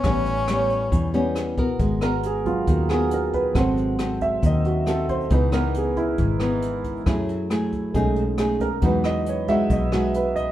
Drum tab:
HH |xxxxxxxx|xxxxxxxx|xxxxxxxx|xxxxxxxx|
SD |r-r---r-|-r---r--|r-r---r-|-r---r--|
BD |o---o--o|o--oo--o|o--oo--o|o--oo--o|

HH |xxxxxxxx|xxxxxxxx|
SD |r-r---r-|-r---r--|
BD |o--oo--o|o--oo--o|